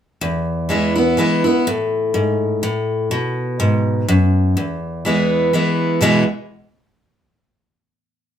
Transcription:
0, 0, Header, 1, 2, 480
1, 0, Start_track
1, 0, Key_signature, 4, "major"
1, 0, Tempo, 482703
1, 216, Time_signature, 3, 2, 24, 8
1, 8342, End_track
2, 0, Start_track
2, 0, Title_t, "Steel-string acoustic guitar"
2, 0, Program_c, 0, 25
2, 212, Note_on_c, 0, 40, 75
2, 684, Note_on_c, 0, 52, 58
2, 694, Note_on_c, 0, 56, 58
2, 698, Note_on_c, 0, 59, 57
2, 708, Note_on_c, 0, 64, 61
2, 938, Note_off_c, 0, 64, 0
2, 944, Note_off_c, 0, 52, 0
2, 949, Note_off_c, 0, 56, 0
2, 950, Note_on_c, 0, 64, 53
2, 951, Note_off_c, 0, 59, 0
2, 976, Note_on_c, 0, 59, 46
2, 1131, Note_off_c, 0, 40, 0
2, 1162, Note_off_c, 0, 64, 0
2, 1164, Note_on_c, 0, 52, 61
2, 1168, Note_off_c, 0, 59, 0
2, 1174, Note_on_c, 0, 56, 55
2, 1180, Note_on_c, 0, 59, 67
2, 1188, Note_on_c, 0, 64, 69
2, 1421, Note_off_c, 0, 64, 0
2, 1424, Note_off_c, 0, 52, 0
2, 1429, Note_off_c, 0, 56, 0
2, 1432, Note_off_c, 0, 59, 0
2, 1433, Note_on_c, 0, 64, 51
2, 1454, Note_on_c, 0, 59, 44
2, 1644, Note_off_c, 0, 64, 0
2, 1654, Note_off_c, 0, 59, 0
2, 1661, Note_on_c, 0, 45, 83
2, 2129, Note_on_c, 0, 44, 75
2, 2576, Note_off_c, 0, 45, 0
2, 2592, Note_off_c, 0, 44, 0
2, 2614, Note_on_c, 0, 45, 74
2, 3075, Note_off_c, 0, 45, 0
2, 3093, Note_on_c, 0, 47, 79
2, 3577, Note_on_c, 0, 44, 79
2, 4013, Note_off_c, 0, 47, 0
2, 4037, Note_off_c, 0, 44, 0
2, 4062, Note_on_c, 0, 42, 82
2, 4519, Note_off_c, 0, 42, 0
2, 4542, Note_on_c, 0, 40, 70
2, 5021, Note_on_c, 0, 52, 60
2, 5032, Note_on_c, 0, 56, 53
2, 5037, Note_on_c, 0, 59, 63
2, 5045, Note_on_c, 0, 64, 61
2, 5458, Note_off_c, 0, 40, 0
2, 5479, Note_off_c, 0, 52, 0
2, 5485, Note_off_c, 0, 56, 0
2, 5487, Note_off_c, 0, 59, 0
2, 5491, Note_off_c, 0, 64, 0
2, 5503, Note_on_c, 0, 52, 57
2, 5511, Note_on_c, 0, 56, 57
2, 5518, Note_on_c, 0, 59, 58
2, 5523, Note_on_c, 0, 64, 59
2, 5960, Note_off_c, 0, 52, 0
2, 5964, Note_off_c, 0, 56, 0
2, 5967, Note_off_c, 0, 59, 0
2, 5970, Note_off_c, 0, 64, 0
2, 5973, Note_on_c, 0, 40, 72
2, 5979, Note_on_c, 0, 47, 69
2, 5987, Note_on_c, 0, 52, 78
2, 5989, Note_on_c, 0, 56, 93
2, 5994, Note_on_c, 0, 59, 89
2, 5999, Note_on_c, 0, 64, 85
2, 6188, Note_off_c, 0, 40, 0
2, 6191, Note_off_c, 0, 47, 0
2, 6195, Note_off_c, 0, 52, 0
2, 6196, Note_off_c, 0, 56, 0
2, 6198, Note_off_c, 0, 59, 0
2, 6201, Note_off_c, 0, 64, 0
2, 8342, End_track
0, 0, End_of_file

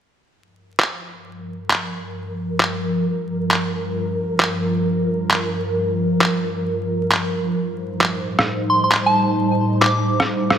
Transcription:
0, 0, Header, 1, 4, 480
1, 0, Start_track
1, 0, Key_signature, -2, "minor"
1, 0, Tempo, 451128
1, 373, Time_signature, 4, 2, 24, 8
1, 11260, End_track
2, 0, Start_track
2, 0, Title_t, "Synth bell"
2, 0, Program_c, 0, 98
2, 9254, Note_on_c, 0, 84, 78
2, 9353, Note_off_c, 0, 84, 0
2, 9403, Note_on_c, 0, 84, 67
2, 9460, Note_off_c, 0, 84, 0
2, 9642, Note_on_c, 0, 81, 83
2, 10126, Note_off_c, 0, 81, 0
2, 10438, Note_on_c, 0, 86, 86
2, 10841, Note_off_c, 0, 86, 0
2, 11260, End_track
3, 0, Start_track
3, 0, Title_t, "Ambient pad"
3, 0, Program_c, 1, 92
3, 366, Note_on_c, 1, 43, 76
3, 367, Note_on_c, 1, 53, 71
3, 368, Note_on_c, 1, 70, 91
3, 8007, Note_off_c, 1, 43, 0
3, 8007, Note_off_c, 1, 53, 0
3, 8008, Note_off_c, 1, 70, 0
3, 8050, Note_on_c, 1, 63, 75
3, 8051, Note_on_c, 1, 72, 88
3, 8054, Note_on_c, 1, 45, 80
3, 8055, Note_on_c, 1, 55, 74
3, 11260, Note_off_c, 1, 45, 0
3, 11260, Note_off_c, 1, 55, 0
3, 11260, Note_off_c, 1, 63, 0
3, 11260, Note_off_c, 1, 72, 0
3, 11260, End_track
4, 0, Start_track
4, 0, Title_t, "Drums"
4, 849, Note_on_c, 9, 39, 92
4, 956, Note_off_c, 9, 39, 0
4, 1813, Note_on_c, 9, 39, 99
4, 1919, Note_off_c, 9, 39, 0
4, 2770, Note_on_c, 9, 39, 89
4, 2877, Note_off_c, 9, 39, 0
4, 3734, Note_on_c, 9, 39, 98
4, 3840, Note_off_c, 9, 39, 0
4, 4683, Note_on_c, 9, 39, 98
4, 4789, Note_off_c, 9, 39, 0
4, 5645, Note_on_c, 9, 39, 99
4, 5752, Note_off_c, 9, 39, 0
4, 6612, Note_on_c, 9, 39, 95
4, 6718, Note_off_c, 9, 39, 0
4, 7570, Note_on_c, 9, 39, 99
4, 7677, Note_off_c, 9, 39, 0
4, 8525, Note_on_c, 9, 39, 93
4, 8631, Note_off_c, 9, 39, 0
4, 8924, Note_on_c, 9, 37, 55
4, 9030, Note_off_c, 9, 37, 0
4, 9487, Note_on_c, 9, 39, 99
4, 9593, Note_off_c, 9, 39, 0
4, 10454, Note_on_c, 9, 39, 85
4, 10560, Note_off_c, 9, 39, 0
4, 10851, Note_on_c, 9, 37, 57
4, 10958, Note_off_c, 9, 37, 0
4, 11176, Note_on_c, 9, 37, 49
4, 11260, Note_off_c, 9, 37, 0
4, 11260, End_track
0, 0, End_of_file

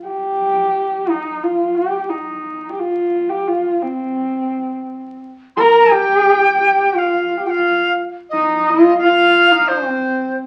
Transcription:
0, 0, Header, 1, 3, 480
1, 0, Start_track
1, 0, Tempo, 687285
1, 45, Time_signature, 4, 2, 24, 8
1, 7309, End_track
2, 0, Start_track
2, 0, Title_t, "Dizi"
2, 0, Program_c, 0, 73
2, 3887, Note_on_c, 0, 84, 79
2, 3917, Note_on_c, 0, 82, 86
2, 3924, Note_off_c, 0, 84, 0
2, 4129, Note_on_c, 0, 79, 96
2, 4139, Note_off_c, 0, 82, 0
2, 4848, Note_off_c, 0, 79, 0
2, 4848, Note_on_c, 0, 79, 66
2, 4876, Note_on_c, 0, 77, 72
2, 4883, Note_off_c, 0, 79, 0
2, 5200, Note_off_c, 0, 77, 0
2, 5204, Note_on_c, 0, 79, 61
2, 5238, Note_on_c, 0, 77, 67
2, 5245, Note_off_c, 0, 79, 0
2, 5538, Note_off_c, 0, 77, 0
2, 5796, Note_on_c, 0, 75, 84
2, 6251, Note_off_c, 0, 75, 0
2, 6273, Note_on_c, 0, 77, 104
2, 6761, Note_on_c, 0, 72, 77
2, 6771, Note_off_c, 0, 77, 0
2, 7242, Note_off_c, 0, 72, 0
2, 7309, End_track
3, 0, Start_track
3, 0, Title_t, "Horsehead fiddle"
3, 0, Program_c, 1, 110
3, 37, Note_on_c, 1, 67, 90
3, 767, Note_on_c, 1, 63, 75
3, 777, Note_off_c, 1, 67, 0
3, 1001, Note_on_c, 1, 65, 69
3, 1011, Note_off_c, 1, 63, 0
3, 1222, Note_on_c, 1, 67, 75
3, 1232, Note_off_c, 1, 65, 0
3, 1464, Note_on_c, 1, 63, 69
3, 1475, Note_off_c, 1, 67, 0
3, 1891, Note_off_c, 1, 63, 0
3, 1895, Note_on_c, 1, 67, 54
3, 1951, Note_on_c, 1, 65, 80
3, 1961, Note_off_c, 1, 67, 0
3, 2301, Note_on_c, 1, 67, 72
3, 2311, Note_off_c, 1, 65, 0
3, 2430, Note_on_c, 1, 65, 74
3, 2440, Note_off_c, 1, 67, 0
3, 2669, Note_on_c, 1, 60, 76
3, 2679, Note_off_c, 1, 65, 0
3, 3637, Note_off_c, 1, 60, 0
3, 3893, Note_on_c, 1, 70, 105
3, 4134, Note_on_c, 1, 67, 111
3, 4145, Note_off_c, 1, 70, 0
3, 4606, Note_off_c, 1, 67, 0
3, 4610, Note_on_c, 1, 67, 86
3, 4857, Note_on_c, 1, 65, 77
3, 4867, Note_off_c, 1, 67, 0
3, 5156, Note_off_c, 1, 65, 0
3, 5161, Note_on_c, 1, 67, 54
3, 5211, Note_on_c, 1, 65, 76
3, 5221, Note_off_c, 1, 67, 0
3, 5567, Note_off_c, 1, 65, 0
3, 5824, Note_on_c, 1, 63, 94
3, 6071, Note_on_c, 1, 65, 102
3, 6082, Note_off_c, 1, 63, 0
3, 6293, Note_off_c, 1, 65, 0
3, 6297, Note_on_c, 1, 65, 86
3, 6645, Note_on_c, 1, 63, 91
3, 6655, Note_off_c, 1, 65, 0
3, 6776, Note_on_c, 1, 60, 72
3, 6786, Note_off_c, 1, 63, 0
3, 7250, Note_off_c, 1, 60, 0
3, 7309, End_track
0, 0, End_of_file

